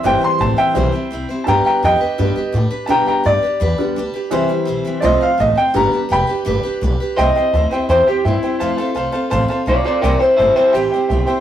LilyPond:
<<
  \new Staff \with { instrumentName = "Upright piano" } { \time 4/4 \key c \major \tempo 4 = 168 g''8 c'''8 a''8 <e'' g''>2 r8 | <g'' a'' bes''>8 <g'' bes''>8 <ees'' g''>2 r4 | <g'' a'' bes''>8 <g'' bes''>8 d''2 r4 | r2 <d'' ees''>8 f''8 ees''8 g''8 |
bes''4 <g'' b''>2 r4 | <c'' e'' g''>8 <c'' e'' g''>8 <c'' e'' a''>8 <c'' e'' g''>8 <c'' e'' g''>8 <c'' e'' g''>8 <c'' e'' g''>8 <c'' e'' g''>8 | <c'' f'' a''>8 <c'' f'' a''>8 <c'' f'' a''>8 <c'' f'' a''>8 <c'' f'' a''>8 <c'' f'' a''>8 <c'' f'' a''>8 <c'' f'' a''>8 | <c'' e'' g''>8 <c'' e'' g''>8 <c'' e'' a''>8 <c'' e'' g''>8 <c'' e'' g''>8 <c'' e'' g''>8 <c'' e'' g''>8 <c'' e'' g''>8 | }
  \new Staff \with { instrumentName = "Upright piano" } { \clef bass \time 4/4 \key c \major <e g c'>2 <e g c'>8 r4. | <d g b>4. r8 <d g b>8 r4. | <d g b>4. r4 <d g b>8 r4 | <e g c'>2 <f a c'>8 r4. |
<d g b>8 r2. r8 | r1 | r1 | r1 | }
  \new Staff \with { instrumentName = "Clean electric guitar" } { \time 4/4 \key c \major r1 | r1 | r1 | r1 |
r1 | ees''2 c''8 g'8 e'4~ | e'4 r2 <f' d''>8 <f' d''>8 | <bes' d''>8 <e' c''>8 <e' c''>8 <e' c''>8 g'2 | }
  \new Staff \with { instrumentName = "Steel-string acoustic guitar" } { \time 4/4 \key c \major <c e g c' e' c''>8 <c' e' c''>8 <g c' e' c''>8 <g c' e' c''>8 <c e g c' e' c''>8 <g c' e' c''>8 <g c' e' c''>8 <g c' e' c''>8 | <g d' g' b'>8 <d' g' b'>8 <g d' g' b'>8 <d' g' b'>8 <g d' g' b'>8 <d' g' b'>8 <g d' g' b'>8 <d' g' b'>8 | <g d' g' b'>8 <d' g' b'>8 <g d' g' b'>8 <d' g' b'>8 <g d' g' b'>8 <d' g' b'>8 <g d' g' b'>8 <d' g' b'>8 | <c e g c' e' c''>8 <g c' e' c''>8 <g c' e' c''>8 <g c' e' c''>8 <f a c' f' c''>8 <c' f' c''>8 <a c' f' c''>8 <c' f' c''>8 |
<g d' g' b'>8 <d' g' b'>8 <g d' g' b'>8 <d' g' b'>8 <g d' g' b'>8 <d' g' b'>8 <g d' g' b'>8 <d' g' b'>8 | <c e g c' e' c''>8 <g c' e' c''>8 <g c' e' c''>8 <g c' e' c''>8 <c e g c' e' c''>8 <g c' e' c''>8 <g c' e' c''>8 <g c' e' c''>8 | <f a c' f' a'>8 <c' f' a'>8 <a c' f' a'>8 <c' f' a'>8 <f a c' f' a'>8 <c' f' a'>8 <a c' f' a'>8 <c' f' a'>8 | <c e g c' e' c''>8 <g c' e' c''>8 <g c' e' c''>8 <g c' e' c''>8 <c e g c' e' c''>8 <g c' e' c''>8 <g c' e' c''>8 <g c' e' c''>8 | }
  \new Staff \with { instrumentName = "Upright bass" } { \clef bass \time 4/4 \key c \major g,,8 r8 a,,8 r8 b,,8 r8 c,8 r8 | g,8 r8 f,8 r8 g,8 r8 a,8 r8 | b,8 r8 g,8 r8 e,8 r8 d,8 r8 | c,8 r8 b,,8 r8 c,8 r8 a,,8 r8 |
g,,8 r8 f,,8 r8 g,,8 r8 b,,8 r8 | c,8 r8 d,8 r8 e,8 r8 g,8 r8 | f,8 r8 c,8 r8 a,,8 r8 b,,8 r8 | c,8 r8 g,,8 r8 a,,8 r8 b,,8 r8 | }
>>